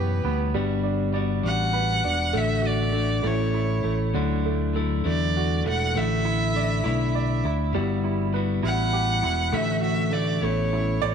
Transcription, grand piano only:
0.00 0.50 E3 medium
0.00 0.25 B3 medium
0.00 0.57 G4 medium
0.25 0.54 B3 medium
0.55 2.30 G3 medium
0.83 1.42 D4 medium
1.14 2.30 D5 medium
1.43 2.03 D4 medium
1.73 2.32 B4 medium
2.04 2.33 D4 medium
2.33 2.91 A3 medium
2.62 3.21 F#4 medium
2.92 3.21 A3 medium
3.23 3.83 A3 medium
3.54 4.13 E4 medium
3.84 4.13 A3 medium
4.14 5.91 D3 medium
4.46 5.04 A3 medium
4.76 5.92 A4 medium
5.06 5.65 A3 medium
5.37 5.94 F#4 medium
5.67 5.94 A3 medium
5.96 7.70 A3 medium
6.25 6.82 E4 medium
6.56 7.14 D5 medium
6.84 7.44 E4 medium
7.15 7.73 D5 medium
7.45 7.74 E4 medium
7.75 9.49 G3 medium
8.04 8.62 E4 medium
8.34 9.50 B4 medium
8.63 9.21 E4 medium
8.93 9.51 G4 medium
9.23 9.52 E4 medium
9.52 10.10 A3 medium
9.81 10.40 F#4 medium
10.11 10.41 A3 medium
10.43 11.01 A3 medium
10.73 11.15 E4 medium
11.02 11.15 A3 medium
11.02 11.15 D5 loud

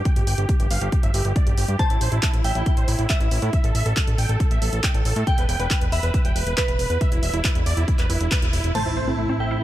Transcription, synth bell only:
1.79 2.36 A5 loud
2.44 3.01 G5 medium
3.10 3.66 E5 medium
5.27 5.84 G5 loud
5.92 6.49 E5 medium
6.57 7.14 B4 medium
8.75 9.32 A5 loud
9.40 9.63 G5 medium

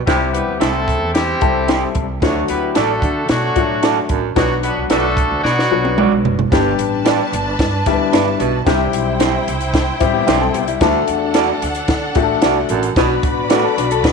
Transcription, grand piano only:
0.07 0.90 G3 medium
0.07 0.90 C4 medium
0.07 0.90 E4 medium
0.07 0.90 G4 medium
1.41 2.03 G3 medium
1.41 2.04 C4 medium
1.41 2.04 E4 medium
1.41 2.04 A4 loud
2.23 3.05 F#3 medium
2.23 3.05 A3 medium
2.23 3.05 D4 medium
2.23 3.05 F#4 loud
3.56 4.18 F#3 medium
3.56 4.18 A3 medium
3.56 4.19 D4 medium
3.56 4.19 F#4 loud
4.36 5.19 F#3 medium
4.36 5.19 B3 medium
4.36 5.19 D4 medium
4.36 5.20 F#4 loud
5.71 6.33 F#3 medium
5.71 6.34 B3 medium
5.71 6.34 D4 medium
5.71 6.34 F#4 medium
6.52 7.35 G3 medium
6.52 7.35 B3 medium
6.52 7.35 D4 medium
6.52 7.35 G4 loud
7.87 8.49 G3 medium
7.87 7.93 A3 medium
7.87 8.49 D4 medium
7.87 8.49 E4 medium
7.94 8.52 B3 medium
8.66 9.49 G3 medium
8.66 9.49 C4 medium
8.66 9.49 E4 medium
8.66 9.49 G4 medium
10.00 10.63 G3 medium
10.00 10.63 C4 medium
10.00 10.63 E4 medium
10.00 10.63 G4 loud
10.81 11.64 A3 medium
10.81 11.64 D4 medium
10.81 11.64 F#4 medium
10.81 11.65 A4 loud
12.16 12.78 A3 medium
12.16 12.79 D4 medium
12.16 12.78 F#4 medium
12.16 12.22 G4 medium
12.23 12.82 A4 medium
12.97 13.80 B3 medium
12.97 13.80 D4 medium
12.97 13.80 F#4 medium
12.97 13.80 B4 loud

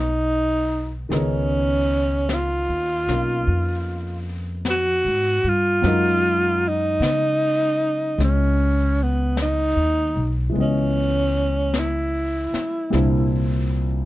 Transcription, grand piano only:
0.00 1.10 F#3 medium
0.00 1.11 G#3 soft
0.00 1.10 B3 soft
0.00 1.12 D#4 medium
0.00 1.11 A#4 soft
1.09 5.83 D#3 soft
1.09 5.84 B3 soft
1.09 3.08 C#4 soft
1.09 5.84 G#4 soft
1.14 3.09 D#4 medium
3.09 5.83 A#3 soft
3.09 5.84 C#4 soft
3.09 5.84 D#4 soft
3.09 5.85 F5 soft
5.82 10.54 F#3 medium
5.82 8.17 G#3 soft
5.82 8.19 C#4 soft
5.82 10.55 A#4 soft
5.87 10.56 D#4 medium
8.18 10.51 G#3 soft
8.18 10.55 C#4 soft
10.49 12.89 E3 soft
10.49 12.91 G#3 soft
10.55 12.92 B3 soft
10.55 12.94 C#4 soft
10.60 12.95 D#5 soft
12.90 14.05 A#2 soft
12.90 14.05 G3 soft
12.90 14.05 C4 soft
12.90 14.05 D4 soft
12.95 14.05 E4 medium

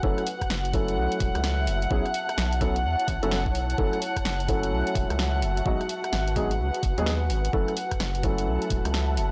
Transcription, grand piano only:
0.03 0.20 F#3 medium
0.03 0.20 A3 medium
0.03 0.20 C#4 medium
0.03 0.20 E4 medium
0.03 0.20 A4 medium
0.74 1.89 F#3 medium
0.74 1.89 A3 medium
0.74 1.89 C#4 medium
0.74 1.89 E4 medium
0.74 1.89 A4 medium
1.91 2.02 F#3 medium
1.91 2.02 B3 medium
1.91 2.02 C#4 medium
1.91 2.02 E4 medium
1.91 2.02 G#4 medium
2.61 2.72 F#3 medium
2.61 2.72 B3 medium
2.61 2.73 C#4 medium
2.61 2.72 E4 medium
2.61 2.73 A4 medium
3.23 3.35 F#3 medium
3.23 3.35 B3 medium
3.23 3.35 C#4 medium
3.23 3.35 E4 medium
3.23 3.35 A4 loud
3.78 3.95 F#3 medium
3.78 3.95 A3 medium
3.78 3.95 C#4 medium
3.78 3.95 E4 medium
3.78 3.95 A4 medium
4.48 5.64 F#3 medium
4.48 5.64 A3 medium
4.48 5.64 C#4 medium
4.48 5.64 E4 medium
4.48 5.64 A4 medium
5.66 5.77 F#3 medium
5.66 5.77 G#3 medium
5.66 5.77 B3 medium
5.66 5.77 D#4 medium
5.66 5.77 F#4 medium
6.36 6.48 F#3 medium
6.36 6.48 G#3 medium
6.36 6.48 B3 medium
6.36 6.48 D#4 medium
6.36 6.48 G#4 medium
6.98 7.10 F#3 medium
6.98 7.10 G#3 medium
6.98 7.10 B3 medium
6.98 7.10 D#4 medium
6.98 7.10 G#4 loud
7.53 7.70 F#3 medium
7.53 7.70 A3 medium
7.53 7.70 C#4 medium
7.53 7.70 E4 medium
7.53 7.70 A4 medium
8.24 9.32 F#3 medium
8.24 9.32 A3 medium
8.24 9.32 C#4 medium
8.24 9.32 E4 medium
8.24 9.32 A4 medium

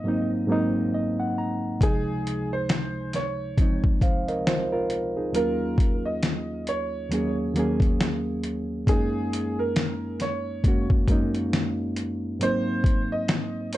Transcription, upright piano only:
0.00 0.28 D#5 medium
1.83 2.48 G#4 loud
2.53 3.11 C5 medium
3.16 3.80 C#5 medium
5.36 6.01 A#4 medium
6.05 6.67 D#5 medium
6.69 7.34 C#5 medium
8.89 9.58 G#4 loud
9.59 10.17 A#4 medium
10.22 10.87 C#5 medium
12.43 13.07 C5 loud
13.12 13.70 D#5 medium

